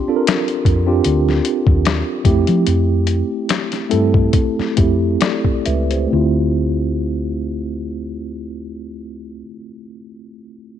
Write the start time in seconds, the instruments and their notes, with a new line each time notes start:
Already playing: tine electric piano C4 D4 F4 G4 C6
0.08 tine electric piano C4 D4 F4 A4
0.16 tine electric piano A#4
0.27 finger snap, snare, closed hi-hat
0.48 closed hi-hat
0.65 fingered electric bass F2, kick, closed hi-hat
0.86 tine electric piano C4 D4 F4 G4
1.04 fingered electric bass D2, closed hi-hat
1.29 snare
1.45 closed hi-hat
1.67 fingered electric bass D#2, kick
1.85 finger snap, snare, closed hi-hat
2.24 fingered electric bass F2, tine electric piano A3 C4 E4 G4, kick, closed hi-hat
2.47 fingered electric bass F3, closed hi-hat
2.67 fingered electric bass F2, closed hi-hat
3.07 closed hi-hat
3.49 finger snap, snare, closed hi-hat
3.72 snare, closed hi-hat
3.89 fingered electric bass G2, tine electric piano A3 C4 E4 A4, closed hi-hat
4.14 kick
4.33 kick, closed hi-hat
4.59 muted fingered electric bass stroke, snare
4.76 fingered electric bass F2, tine electric piano A3 C4 E4 G4, kick, closed hi-hat
5.21 tine electric piano A4 D5, finger snap, snare, closed hi-hat
5.45 kick
5.66 fingered electric bass C#2, tine electric piano B4 E5, closed hi-hat
5.91 tine electric piano G4 C5, closed hi-hat
6.07 tine electric piano A3 C4
6.13 fingered electric bass D2, tine electric piano E4 F4